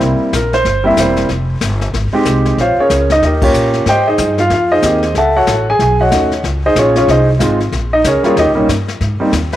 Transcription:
Already playing: grand piano G3 A#3 C4 E4
0.00 upright bass C2, brush sweep, kick, snare
0.20 muted upright bass stroke
0.33 upright bass A#1, grand piano A#4, kick, snare, hi-hat pedal
0.53 grand piano C5, snare
0.65 upright bass G1, brush sweep, kick, snare
0.84 grand piano G3 A#3 C4 E4 E5
0.97 upright bass E1, grand piano C5, kick, snare, hi-hat pedal
1.16 snare
1.29 upright bass F1, brush sweep, kick, snare
1.61 upright bass G1, kick, snare, hi-hat pedal
1.81 snare
1.93 upright bass G#1, brush sweep, kick, snare
2.13 grand piano G#3 C4 D#4 G4, muted upright bass stroke
2.25 upright bass C2, kick, snare, hi-hat pedal
2.45 snare
2.58 upright bass A#1, grand piano F4 C5 C#5 F5, brush sweep, kick, snare
2.77 grand piano C#4 G#4 A#4 C#5, muted upright bass stroke
2.90 upright bass C#2, kick, snare, hi-hat pedal
3.10 grand piano D#4 D#5, snare
3.22 upright bass D#2, grand piano D#4 G4 A#4 D#5, brush sweep, kick, snare
3.42 grand piano A#3 C#4 F4 G4 A#4 C#5, kick, crash
3.54 upright bass A#2, hi-hat pedal
3.74 snare
3.86 upright bass G#2, grand piano G4 C5 D#5 G5, brush sweep, kick, snare
4.07 grand piano D#4 G#4 C5 D#5
4.18 upright bass G2, kick, snare, hi-hat pedal
4.38 grand piano F4 F5, snare
4.50 upright bass F2, grand piano F4 F5, brush sweep, kick, snare
4.72 grand piano D#4 G#4 C5 D#5
4.82 upright bass D#2, grand piano A#3 C4 D#4 G4, kick, snare, hi-hat pedal
5.03 snare
5.14 upright bass C#2, grand piano A4 E5 F#5 A5, brush sweep, kick, snare
5.37 grand piano F#4 A4 C#5 F#5
5.47 upright bass A1, kick, snare, hi-hat pedal
5.70 grand piano G#4 G#5
5.79 upright bass B1, grand piano G#4 G#5, brush sweep, kick, snare
6.01 grand piano F#4 C#5 D#5 F#5
6.10 upright bass D#2, grand piano A3 C#4 D#4 F#4, kick, snare, hi-hat pedal
6.32 snare
6.43 upright bass C#2, brush sweep, kick, snare
6.66 grand piano D#4 G#4 C5 D#5
6.75 upright bass A#1, grand piano C#4 F4 G#4 C#5, kick, snare, hi-hat pedal
6.96 grand piano C#4 F4 G#4 C#5, snare
7.08 upright bass C2, grand piano D#4 G#4 C5 D#5, brush sweep, kick, snare
7.39 upright bass G#1, grand piano G#3 C4 D#4 F4, kick, snare, hi-hat pedal
7.60 snare
7.72 upright bass A#1, brush sweep, kick, snare
7.93 grand piano D#4 D#5
8.04 upright bass C#2, grand piano C#4 G#4 A#4 C#5, kick, snare, hi-hat pedal
8.23 grand piano G3 A#3 C#4 F4 G#4 A#4 C#5, muted upright bass stroke, snare
8.36 upright bass D#2, grand piano D#4 G4 A#4 D#5, brush sweep, kick, snare
8.47 upright bass C#2
8.55 upright bass A#1, grand piano G3 A#3 C#4 D#4
8.68 upright bass G2, kick, snare, hi-hat pedal
8.88 snare
9.00 upright bass G#2, brush sweep, kick, snare
9.20 grand piano G3 A#3 C4 D#4, muted upright bass stroke
9.32 upright bass D#2, kick, snare, hi-hat pedal
9.53 snare

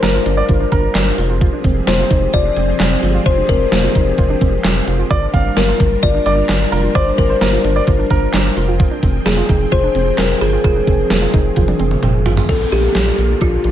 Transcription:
Already playing: string machine G3 D4 F4 A#4, kalimba A#4
0.03 analog synth bass G1, synth pluck A#3, grand piano A#4, snare, closed hi-hat
0.14 synth pluck F4
0.26 analog synth bass G1, synth pluck D4, closed hi-hat
0.37 grand piano D5
0.49 analog synth bass G1, synth pluck F4, kick, closed hi-hat
0.60 synth pluck D4
0.72 analog synth bass G1, synth pluck D4, grand piano A#4, kick, closed hi-hat
0.95 analog synth bass G1, synth pluck D4, snare, clap, closed hi-hat
1.18 analog synth bass F1, string machine F3 C4 G4 G#4, synth pluck F4, open hi-hat
1.30 synth pluck F4
1.41 synth pluck F4, kick, closed hi-hat
1.53 synth pluck D4
1.64 analog synth bass F1, synth pluck C4, kick, closed hi-hat
1.87 analog synth bass F1, synth pluck A#3, kalimba C5, snare, closed hi-hat
1.99 synth pluck F4
2.11 analog synth bass F1, synth pluck D#4, kick, closed hi-hat
2.33 analog synth bass F1, synth pluck F4, kalimba D5, kick, closed hi-hat
2.45 synth pluck D4
2.56 analog synth bass F1, synth pluck C4, closed hi-hat
2.80 analog synth bass F1, synth pluck C4, snare, clap, closed hi-hat
3.03 analog synth bass G1, synth pluck F4, open hi-hat
3.14 synth pluck F4
3.26 analog synth bass F1, synth pluck F4, kalimba C5, kick, closed hi-hat
3.37 synth pluck D4
3.49 analog synth bass F1, synth pluck C4, kalimba A#4, kick, closed hi-hat
3.72 analog synth bass F1, synth pluck A#3, snare, closed hi-hat
3.84 synth pluck F4
3.95 analog synth bass F1, synth pluck D#4, kick, closed hi-hat
4.18 analog synth bass F1, synth pluck F4, kick, closed hi-hat
4.30 synth pluck D4
4.41 analog synth bass F1, synth pluck C4, kick, closed hi-hat
4.64 analog synth bass F1, synth pluck C4, snare, clap, closed hi-hat
4.87 analog synth bass F1, synth pluck F4, closed hi-hat
4.99 synth pluck F4
5.10 analog synth bass G1, string machine G3 D4 F4 A#4, synth pluck F4, grand piano D5, kick, closed hi-hat
5.22 synth pluck D4
5.33 analog synth bass G1, synth pluck C4, grand piano F5, kick, closed hi-hat
5.57 analog synth bass G1, synth pluck A#3, kalimba A#4, snare, closed hi-hat
5.68 synth pluck F4
5.80 analog synth bass G1, synth pluck D4, kick, closed hi-hat
6.03 analog synth bass G1, synth pluck F4, kalimba D5, kick, closed hi-hat
6.15 synth pluck D4
6.26 analog synth bass G1, synth pluck D4, grand piano D5, closed hi-hat
6.49 analog synth bass G1, synth pluck D4, snare, clap, closed hi-hat
6.72 analog synth bass F1, synth pluck F4, grand piano A#4, open hi-hat
6.84 synth pluck F4
6.95 analog synth bass G1, synth pluck F4, kalimba C5, grand piano D5, kick, closed hi-hat
7.07 synth pluck D4
7.18 analog synth bass G1, synth pluck C4, kalimba A#4, kick, closed hi-hat
7.30 grand piano C5
7.41 analog synth bass G1, synth pluck A#3, grand piano A#4, snare, closed hi-hat
7.53 synth pluck F4
7.64 analog synth bass G1, synth pluck D4, closed hi-hat
7.76 grand piano D5
7.87 analog synth bass G1, synth pluck F4, kick, closed hi-hat
7.99 synth pluck D4
8.10 analog synth bass G1, synth pluck D4, grand piano A#4, kick, closed hi-hat
8.33 analog synth bass G1, synth pluck D4, snare, clap, closed hi-hat
8.57 analog synth bass F1, string machine F3 C4 G#4 G5, synth pluck F4, open hi-hat
8.68 synth pluck F4
8.80 synth pluck F4, kick, closed hi-hat
8.91 synth pluck D4
9.03 analog synth bass F1, synth pluck C4, kick, closed hi-hat
9.26 analog synth bass F1, synth pluck A#3, kalimba G#4, snare, closed hi-hat
9.37 synth pluck F4
9.49 analog synth bass F1, synth pluck D#4, kick, closed hi-hat
9.72 analog synth bass F1, synth pluck F4, kalimba C5, kick, closed hi-hat
9.84 synth pluck D4
9.95 analog synth bass F1, synth pluck C4, closed hi-hat
10.18 analog synth bass F1, synth pluck C4, kalimba A#4, snare, clap, closed hi-hat
10.41 analog synth bass G1, synth pluck F4, kalimba G#4, open hi-hat
10.53 synth pluck F4
10.64 analog synth bass F1, synth pluck F4, kalimba G#4, kick, closed hi-hat
10.76 synth pluck D4
10.87 analog synth bass F1, synth pluck C4, kick, closed hi-hat
11.10 analog synth bass F1, synth pluck A#3, snare, closed hi-hat
11.22 synth pluck F4
11.34 analog synth bass F1, synth pluck D#4, kick, closed hi-hat
11.56 analog synth bass F1, synth pluck F4, kick, closed hi-hat, high tom
11.68 synth pluck D4, high tom
11.79 analog synth bass F1, synth pluck C4, closed hi-hat
11.91 mid tom
12.03 analog synth bass F1, synth pluck C4, closed hi-hat, mid tom
12.26 analog synth bass G#1, synth pluck F4, closed hi-hat, floor tom
12.37 synth pluck F4, floor tom
12.49 analog synth bass A#1, string machine A#3 D4 F4, kalimba A4, kick, closed hi-hat, crash, downlifter
12.72 analog synth bass A#1, kalimba G4, closed hi-hat
12.95 analog synth bass A#1, snare, closed hi-hat
13.18 analog synth bass A#1, closed hi-hat
13.41 analog synth bass A#1, kalimba F4, kick, closed hi-hat
13.64 analog synth bass A#1, closed hi-hat

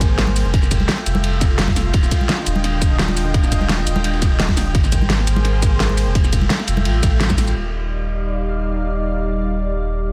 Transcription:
Already playing: sub bass G#1, analog synth pad A#3 G#4 C5 G5
0.01 kick, closed hi-hat, ride, shaker
0.18 snare, closed hi-hat, ride
0.27 sub bass G#1, high conga
0.36 open hi-hat, ride, shaker
0.45 sub bass F1, high bongo
0.54 analog synth pad A3 F4 E5, kick, closed hi-hat, ride
0.62 snare, ride, shaker
0.71 kick, closed hi-hat, ride, high bongo, shaker
0.79 ride, high conga
0.88 snare, closed hi-hat, ride
0.98 snare, high bongo
1.06 sub bass F1, closed hi-hat, ride, shaker
1.15 ride, high conga
1.24 closed hi-hat, ride
1.33 ride
1.41 kick, snare, closed hi-hat, ride, shaker
1.51 ride
1.58 snare, closed hi-hat, ride
1.68 kick, snare, high conga
1.76 snare, open hi-hat, ride, shaker
1.93 sub bass D#1, analog synth pad D3 D#5 G5, kick, closed hi-hat, ride
2.03 snare, ride, shaker
2.11 kick, closed hi-hat, ride, high bongo, shaker
2.21 high conga
2.29 snare, closed hi-hat, ride
2.38 snare
2.46 sub bass D#1, closed hi-hat, ride, shaker
2.56 high conga
2.64 snare, closed hi-hat, ride
2.81 kick, closed hi-hat, ride, shaker
2.99 snare, closed hi-hat, ride
3.08 high conga
3.16 open hi-hat, ride, shaker
3.25 high bongo
3.34 kick, closed hi-hat, ride
3.43 snare, ride, shaker
3.52 kick, closed hi-hat, ride, high bongo, shaker
3.61 ride, high conga
3.69 snare, closed hi-hat, ride
3.78 snare, high bongo
3.87 sub bass D#1, closed hi-hat, ride, shaker
3.96 ride, high conga
4.04 closed hi-hat, ride
4.14 ride
4.22 kick, snare, closed hi-hat, ride, shaker
4.31 ride
4.39 snare, closed hi-hat, ride
4.48 kick, snare, high conga
4.57 snare, open hi-hat, ride, shaker
4.74 sub bass G#1, analog synth pad A#3 G#4 C5, kick, closed hi-hat, ride
4.84 snare, ride, shaker
4.92 kick, closed hi-hat, ride, high bongo, shaker
5.02 high conga
5.10 snare, closed hi-hat, ride
5.19 snare
5.27 sub bass G#1, closed hi-hat, ride, shaker
5.36 high conga
5.44 snare, closed hi-hat, ride
5.62 kick, closed hi-hat, ride, shaker
5.80 snare, closed hi-hat, ride
5.89 sub bass G#1, high conga
5.97 open hi-hat, ride, shaker
6.06 sub bass F1, high bongo
6.15 analog synth pad A3 F4 E5 G5, kick, closed hi-hat, ride
6.24 snare, ride, shaker
6.33 kick, closed hi-hat, ride, high bongo, shaker
6.41 ride, high conga
6.50 snare, closed hi-hat, ride
6.59 snare, high bongo
6.67 sub bass F1, closed hi-hat, ride, shaker
6.77 ride, high conga
6.85 sub bass A1, closed hi-hat, ride
6.94 ride
7.03 sub bass A1, kick, snare, closed hi-hat, ride, shaker
7.12 ride
7.20 snare, closed hi-hat, ride
7.29 kick, snare, ride, high bongo, high conga, shaker
7.38 snare, open hi-hat, ride, shaker
7.47 ride, shaker
7.55 sub bass D#1, analog synth pad G3 D#4 D5 F5

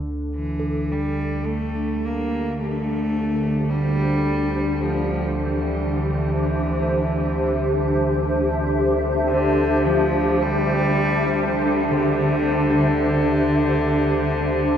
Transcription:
Already playing: synth drone D2 D3, bronze metallophone D3
0.33 cello E3, ambient pad D4
0.60 bronze metallophone A4
0.92 cello G3
1.43 ambient pad G4
1.47 cello A3
2.05 cello A#3
2.17 ambient pad C5
2.60 cello A3
3.70 cello G3
4.69 ambient pad E5
4.83 cello F3
5.39 cello E3
9.29 cello D3
9.85 cello F3
10.41 cello G3
11.53 cello D3
11.91 bronze metallophone D3

